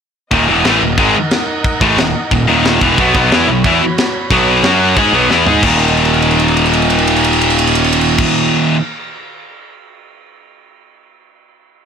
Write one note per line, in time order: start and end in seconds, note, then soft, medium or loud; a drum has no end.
0.31 0.47 D#1 medium
0.31 0.47 D#2 medium
0.31 0.48 A#2 loud
0.31 0.48 D#3 loud
0.31 2.96 D#4 medium
0.31 2.96 A#4 medium
0.31 2.96 D#5 medium
0.31 2.96 F#5 medium
0.31 kick loud
0.31 crash medium
0.48 0.64 E1 medium
0.48 0.64 E2 medium
0.48 0.64 B2 medium
0.48 0.64 E3 loud
0.64 0.80 A1 loud
0.64 0.81 A2 medium
0.64 0.81 E3 medium
0.64 0.81 A3 loud
0.64 snare loud
0.64 crash medium
0.81 0.97 D#1 medium
0.81 0.95 D#2 medium
0.81 0.96 A#2 medium
0.98 1.14 G#1 medium
0.98 1.14 G#2 loud
0.98 1.14 D#3 medium
0.98 1.15 G#3 loud
0.98 kick loud
0.98 crash medium
1.31 snare loud
1.31 crash medium
1.64 kick loud
1.64 crash medium
1.81 1.97 A1 medium
1.81 1.98 A2 medium
1.81 1.98 E3 loud
1.81 1.99 A3 loud
1.81 kick loud
1.97 2.13 D#1 medium
1.97 2.11 D#2 medium
1.97 2.12 A#2 medium
1.97 snare loud
1.97 crash medium
2.31 2.47 D#1 medium
2.31 2.45 D#2 medium
2.31 2.45 A#2 medium
2.31 kick medium
2.31 crash medium
2.47 2.79 D#1 loud
2.47 2.80 D#2 loud
2.47 2.81 A#2 loud
2.47 2.81 D#3 loud
2.65 snare loud
2.65 crash medium
2.81 2.97 E1 loud
2.81 2.97 E2 medium
2.81 2.98 B2 loud
2.81 2.98 E3 loud
2.81 kick loud
2.98 3.13 B1 medium
2.98 3.14 B2 loud
2.98 3.15 F#3 loud
2.98 3.15 B3 loud
2.98 4.63 B3 medium
2.98 4.63 F#4 medium
2.98 4.63 C#5 medium
2.98 4.63 B5 medium
2.98 kick loud
2.98 crash medium
3.15 3.30 B1 medium
3.15 3.31 B2 medium
3.15 3.31 F#3 loud
3.15 3.31 B3 loud
3.15 kick loud
3.31 3.47 E2 loud
3.31 3.48 E3 loud
3.31 3.48 B3 medium
3.31 3.48 E4 loud
3.31 snare loud
3.31 crash medium
3.47 3.63 B1 medium
3.47 3.62 B2 medium
3.47 3.62 F#3 medium
3.64 3.80 E2 medium
3.64 3.81 E3 medium
3.64 3.81 B3 loud
3.64 3.82 E4 loud
3.64 kick loud
3.64 crash medium
3.98 snare loud
3.98 crash medium
4.30 4.61 B1 medium
4.30 4.64 B2 loud
4.30 4.64 F#3 loud
4.30 4.64 B3 loud
4.30 kick loud
4.30 crash medium
4.63 4.94 F#2 loud
4.63 4.97 F#3 medium
4.63 4.97 C#4 medium
4.63 4.98 C#4 medium
4.63 4.98 F#4 medium
4.63 4.97 G#4 medium
4.63 4.97 F#5 medium
4.63 snare loud
4.63 crash medium
4.97 5.12 G#2 medium
4.97 5.13 G#3 loud
4.97 5.63 B3 medium
4.97 5.14 D#4 loud
4.97 5.63 F#4 medium
4.97 5.14 G#4 loud
4.97 5.63 C#5 medium
4.97 5.63 B5 medium
4.97 kick loud
4.97 crash medium
5.12 5.28 B1 medium
5.12 5.30 B2 medium
5.12 5.30 F#3 medium
5.12 5.30 B3 loud
5.30 5.45 E2 loud
5.30 5.46 E3 medium
5.30 5.46 B3 medium
5.30 5.47 E4 loud
5.30 snare medium
5.46 5.62 G#2 loud
5.46 5.63 G#3 medium
5.46 5.63 D#4 loud
5.46 5.63 G#4 loud
5.46 floor tom medium
5.62 8.21 D#1 medium
5.62 8.76 D#2 medium
5.62 8.76 A#2 medium
5.62 8.76 D#3 loud
5.62 8.22 D#4 medium
5.62 8.22 A#4 medium
5.62 8.22 D#5 medium
5.62 8.22 F#5 medium
5.62 kick loud
5.62 crash loud
5.80 crash medium
5.88 ride soft
5.97 crash soft
6.05 ride soft
6.14 crash medium
6.22 ride medium
6.31 crash medium
6.39 ride medium
6.48 crash medium
6.57 ride medium
6.65 crash medium
6.73 ride medium
6.82 crash medium
6.90 ride medium
6.98 crash medium
7.07 ride medium
7.16 crash medium
7.24 ride medium
7.33 crash medium
7.41 ride medium
7.50 crash medium
7.59 ride medium
7.67 crash medium
7.75 ride medium
7.84 crash medium
7.93 ride loud
8.01 crash medium
8.18 kick loud
8.18 crash loud